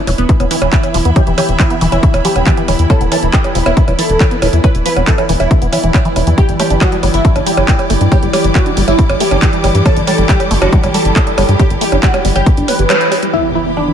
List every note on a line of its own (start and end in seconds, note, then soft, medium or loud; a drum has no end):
0.00 13.32 E3 medium
0.00 7.76 B3 medium
0.00 7.70 E4 medium
0.00 13.32 E4 medium
0.00 6.93 B5 medium
0.07 0.14 E1 medium
0.07 0.11 E3 loud
0.07 3.50 E5 medium
0.07 open hi-hat medium
0.07 percussion blips soft
0.18 0.25 E1 medium
0.18 0.32 B3 medium
0.18 closed hi-hat medium
0.29 0.32 F3 loud
0.29 kick loud
0.29 closed hi-hat medium
0.40 0.47 E1 medium
0.40 0.45 B3 medium
0.40 closed hi-hat medium
0.40 percussion blips soft
0.51 0.56 E3 loud
0.51 1.07 E4 loud
0.51 open hi-hat loud
0.62 0.69 E1 medium
0.62 0.67 E3 medium
0.62 closed hi-hat medium
0.62 percussion blips medium
0.73 0.76 E3 loud
0.73 kick loud
0.73 clap loud
0.73 closed hi-hat medium
0.83 closed hi-hat medium
0.83 percussion blips soft
0.94 1.01 E1 medium
0.94 0.98 F3 loud
0.94 open hi-hat medium
1.05 1.12 E2 medium
1.05 1.11 B3 medium
1.05 closed hi-hat medium
1.16 1.21 E3 loud
1.16 1.25 G4 loud
1.16 kick loud
1.16 closed hi-hat medium
1.16 percussion blips soft
1.27 1.34 E1 medium
1.27 1.32 E3 medium
1.27 closed hi-hat medium
1.38 1.41 E3 loud
1.38 1.47 G4 medium
1.38 open hi-hat loud
1.38 percussion blips medium
1.49 1.56 E1 medium
1.49 closed hi-hat medium
1.60 1.63 F3 loud
1.60 1.74 E4 loud
1.60 kick loud
1.60 clap loud
1.60 closed hi-hat medium
1.60 percussion blips soft
1.70 1.76 B3 medium
1.70 closed hi-hat medium
1.81 1.88 E1 medium
1.81 1.87 E3 loud
1.81 open hi-hat medium
1.92 1.99 E1 medium
1.92 1.97 E3 medium
1.92 2.06 E4 medium
1.92 closed hi-hat medium
1.92 percussion blips soft
2.03 2.06 E3 loud
2.03 kick loud
2.03 closed hi-hat medium
2.14 2.21 E1 medium
2.14 closed hi-hat medium
2.14 percussion blips medium
2.25 2.28 F3 loud
2.25 2.81 G4 loud
2.25 open hi-hat loud
2.36 2.43 E1 medium
2.36 2.41 B3 medium
2.36 closed hi-hat medium
2.36 percussion blips soft
2.46 2.52 E3 loud
2.46 kick loud
2.46 clap loud
2.46 closed hi-hat medium
2.57 2.63 E3 medium
2.57 closed hi-hat medium
2.68 2.75 E1 medium
2.68 2.71 E3 loud
2.68 open hi-hat medium
2.68 percussion blips soft
2.79 2.86 E2 medium
2.79 closed hi-hat medium
2.90 2.93 F3 loud
2.90 2.99 A4 loud
2.90 kick loud
2.90 closed hi-hat medium
2.90 percussion blips medium
3.01 3.08 E1 medium
3.01 3.06 B3 medium
3.01 closed hi-hat medium
3.12 3.17 E3 loud
3.12 3.21 A4 medium
3.12 open hi-hat loud
3.12 percussion blips soft
3.23 3.30 E1 medium
3.23 3.28 E3 medium
3.23 closed hi-hat medium
3.33 3.37 E3 loud
3.33 3.48 G4 medium
3.33 13.93 D5 medium
3.33 kick loud
3.33 clap loud
3.33 closed hi-hat medium
3.44 closed hi-hat medium
3.44 percussion blips soft
3.55 3.62 E1 medium
3.55 3.58 F3 loud
3.55 open hi-hat medium
3.66 3.73 E1 medium
3.66 3.71 B3 medium
3.66 3.80 E4 loud
3.66 closed hi-hat medium
3.66 percussion blips medium
3.77 3.82 E3 loud
3.77 kick loud
3.77 closed hi-hat medium
3.88 3.95 E1 medium
3.88 3.93 E3 medium
3.88 closed hi-hat medium
3.88 percussion blips soft
3.99 4.02 E3 loud
3.99 4.55 A4 loud
3.99 open hi-hat loud
4.10 4.16 E1 medium
4.10 closed hi-hat medium
4.20 4.24 F3 loud
4.20 kick loud
4.20 clap loud
4.20 closed hi-hat medium
4.20 percussion blips soft
4.31 4.37 B3 medium
4.31 closed hi-hat medium
4.42 4.49 E1 medium
4.42 4.47 E3 loud
4.42 open hi-hat loud
4.42 percussion blips medium
4.53 4.60 E2 medium
4.53 4.58 E3 medium
4.53 closed hi-hat medium
4.64 4.67 E3 loud
4.64 4.73 B4 loud
4.64 kick loud
4.64 closed hi-hat medium
4.64 percussion blips soft
4.75 4.82 E1 medium
4.75 closed hi-hat medium
4.86 4.89 F3 loud
4.86 4.95 B4 medium
4.86 open hi-hat loud
4.96 5.03 E1 medium
4.96 5.02 B3 medium
4.96 closed hi-hat soft
4.96 percussion blips soft
5.07 5.13 E3 loud
5.07 5.21 A4 medium
5.07 kick loud
5.07 clap loud
5.07 closed hi-hat medium
5.18 5.24 E3 medium
5.18 closed hi-hat medium
5.18 percussion blips medium
5.29 5.36 E1 medium
5.29 5.32 E3 loud
5.29 open hi-hat medium
5.40 5.47 E1 medium
5.40 5.54 E4 loud
5.40 closed hi-hat soft
5.40 percussion blips soft
5.51 5.54 F3 loud
5.51 kick loud
5.51 closed hi-hat medium
5.62 5.69 E1 medium
5.62 5.67 B3 medium
5.62 closed hi-hat medium
5.73 5.78 E3 medium
5.73 6.29 E4 loud
5.73 open hi-hat loud
5.73 percussion blips soft
5.83 5.90 E1 medium
5.83 5.91 E3 medium
5.83 closed hi-hat medium
5.94 5.98 G3 loud
5.94 kick loud
5.94 clap loud
5.94 closed hi-hat medium
5.94 percussion blips medium
6.05 6.08 E3 loud
6.05 closed hi-hat soft
6.16 6.23 E1 medium
6.16 6.19 E4 medium
6.16 open hi-hat medium
6.16 percussion blips soft
6.27 6.34 E2 medium
6.27 6.30 E3 medium
6.27 closed hi-hat medium
6.38 6.41 G3 loud
6.38 13.33 G3 loud
6.38 6.47 G4 loud
6.38 kick loud
6.38 closed hi-hat medium
6.49 6.56 G1 medium
6.49 closed hi-hat medium
6.59 6.63 A3 loud
6.59 13.91 G4 medium
6.59 6.69 G4 medium
6.59 open hi-hat loud
6.59 percussion blips soft
6.70 6.77 G1 medium
6.70 6.76 D4 medium
6.70 closed hi-hat soft
6.76 13.93 D6 medium
6.81 6.87 G3 loud
6.81 6.95 F#4 loud
6.81 kick loud
6.81 clap loud
6.81 closed hi-hat medium
6.81 percussion blips medium
6.92 6.97 G3 medium
6.92 closed hi-hat medium
7.03 7.10 G1 medium
7.03 7.06 G3 medium
7.03 open hi-hat medium
7.03 percussion blips soft
7.14 7.21 G1 medium
7.14 7.28 E4 loud
7.14 closed hi-hat medium
7.25 7.28 A3 loud
7.25 kick loud
7.25 closed hi-hat medium
7.36 7.43 G1 medium
7.36 7.41 D4 medium
7.36 closed hi-hat medium
7.36 percussion blips soft
7.46 7.52 G3 loud
7.46 8.03 G4 loud
7.46 open hi-hat loud
7.57 7.64 G1 medium
7.57 7.63 G3 medium
7.57 closed hi-hat soft
7.57 percussion blips medium
7.68 7.71 G3 loud
7.68 kick loud
7.68 clap loud
7.68 closed hi-hat medium
7.79 closed hi-hat soft
7.79 percussion blips soft
7.90 7.97 G1 medium
7.90 7.93 A3 loud
7.90 open hi-hat medium
8.01 8.08 G2 medium
8.01 8.06 D4 medium
8.01 closed hi-hat medium
8.12 8.17 G3 loud
8.12 8.21 G4 loud
8.12 kick loud
8.12 closed hi-hat medium
8.12 percussion blips soft
8.23 8.30 G1 medium
8.23 8.28 G3 medium
8.23 closed hi-hat medium
8.33 8.37 G3 loud
8.33 8.43 G4 medium
8.33 open hi-hat loud
8.33 percussion blips medium
8.44 8.51 G1 medium
8.44 closed hi-hat medium
8.55 8.58 A3 loud
8.55 8.69 F#4 medium
8.55 kick loud
8.55 clap loud
8.55 closed hi-hat medium
8.55 percussion blips soft
8.66 8.71 D4 medium
8.66 closed hi-hat medium
8.77 8.84 G1 medium
8.77 8.82 G3 loud
8.77 open hi-hat medium
8.88 8.95 G1 medium
8.88 8.93 G3 medium
8.88 9.02 E4 loud
8.88 closed hi-hat medium
8.88 percussion blips soft
8.99 9.02 G3 loud
8.99 kick loud
8.99 closed hi-hat medium
9.10 9.16 G1 medium
9.10 closed hi-hat medium
9.10 percussion blips medium
9.20 9.24 A3 loud
9.20 9.77 G4 loud
9.20 open hi-hat loud
9.31 9.38 G1 medium
9.31 9.37 D4 medium
9.31 closed hi-hat medium
9.31 percussion blips soft
9.42 9.47 G3 loud
9.42 kick loud
9.42 clap loud
9.42 closed hi-hat medium
9.53 9.58 G3 medium
9.53 closed hi-hat soft
9.64 9.71 G1 medium
9.64 9.67 G3 loud
9.64 open hi-hat medium
9.64 percussion blips soft
9.75 9.82 G2 medium
9.75 closed hi-hat medium
9.86 9.89 A3 loud
9.86 9.95 A4 loud
9.86 kick loud
9.86 closed hi-hat medium
9.86 percussion blips medium
9.96 10.03 G1 medium
9.96 10.02 D4 medium
9.96 closed hi-hat medium
10.07 10.13 G3 loud
10.07 10.17 A4 medium
10.07 open hi-hat loud
10.07 percussion blips soft
10.18 10.25 G1 medium
10.18 10.24 G3 medium
10.18 closed hi-hat medium
10.29 10.32 G3 loud
10.29 10.43 G4 medium
10.29 kick loud
10.29 clap loud
10.29 closed hi-hat medium
10.40 closed hi-hat medium
10.40 percussion blips soft
10.51 10.58 G1 medium
10.51 10.54 A3 loud
10.51 open hi-hat medium
10.62 10.69 G1 medium
10.62 10.67 D4 medium
10.62 10.76 F#4 loud
10.62 closed hi-hat medium
10.62 percussion blips medium
10.73 10.78 G3 loud
10.73 kick loud
10.73 closed hi-hat medium
10.83 10.90 G1 medium
10.83 10.89 G3 medium
10.83 closed hi-hat medium
10.83 percussion blips soft
10.94 10.98 G3 loud
10.94 11.51 A4 loud
10.94 open hi-hat loud
11.05 11.12 G1 medium
11.05 closed hi-hat medium
11.16 11.19 A3 loud
11.16 kick loud
11.16 clap loud
11.16 closed hi-hat medium
11.16 percussion blips soft
11.27 11.32 D4 medium
11.27 closed hi-hat medium
11.38 11.45 G1 medium
11.38 11.43 G3 loud
11.38 open hi-hat medium
11.38 percussion blips medium
11.49 11.56 G2 medium
11.49 11.54 G3 medium
11.49 closed hi-hat medium
11.60 11.63 G3 loud
11.60 11.69 G4 loud
11.60 kick loud
11.60 closed hi-hat medium
11.60 percussion blips soft
11.70 11.77 G1 medium
11.70 closed hi-hat medium
11.81 11.84 A3 loud
11.81 11.91 G4 medium
11.81 open hi-hat loud
11.92 11.99 G1 medium
11.92 11.98 D4 medium
11.92 closed hi-hat medium
11.92 percussion blips soft
12.03 12.08 G3 loud
12.03 12.17 F#4 medium
12.03 kick loud
12.03 clap loud
12.03 closed hi-hat medium
12.14 12.19 G3 medium
12.14 closed hi-hat medium
12.14 percussion blips medium
12.25 12.32 G1 medium
12.25 12.28 G3 loud
12.25 open hi-hat medium
12.36 12.43 G1 medium
12.36 12.50 G4 loud
12.36 closed hi-hat medium
12.36 percussion blips soft
12.46 12.50 A3 loud
12.46 kick loud
12.46 closed hi-hat medium
12.57 12.64 G1 medium
12.57 12.70 D4 medium
12.57 closed hi-hat medium
12.68 12.74 G3 medium
12.68 13.25 B4 loud
12.68 open hi-hat loud
12.68 percussion blips soft
12.79 12.86 G1 medium
12.79 12.84 G4 medium
12.79 closed hi-hat medium
12.90 12.95 G3 medium
12.90 clap loud
12.90 closed hi-hat medium
12.90 percussion blips medium
13.01 closed hi-hat medium
13.12 13.15 G4 medium
13.12 open hi-hat medium
13.12 percussion blips soft
13.23 13.28 G3 medium
13.23 closed hi-hat medium
13.33 13.93 E3 medium
13.33 13.37 E3 loud
13.33 13.93 B3 medium
13.33 13.43 E4 loud
13.33 13.93 E4 medium
13.33 impact medium
13.53 13.58 F3 loud
13.53 13.93 E4 medium
13.53 13.65 E4 medium
13.65 13.71 B3 medium
13.65 13.93 B5 medium
13.77 13.82 E3 medium
13.77 13.91 D4 medium
13.88 13.93 E3 medium